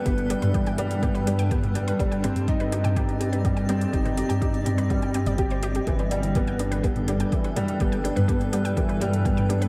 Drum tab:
HH |xxxxxxxxxxxxxxxx|xxxxxxxxxxxxxxxx|xxxxxxxxxxxxxxxx|xxxxxxxxxxxxxxxx|
T2 |---o----o----o--|--o----o----o---|-o----o----o----|----o----o----o-|
BD |o---o---o---o---|o---o---o---o---|o---o---o---o---|o---o---o---o---|

HH |xxxxxxxxxxxxxxxx|
T2 |---o----o----o--|
BD |o---o---o---o---|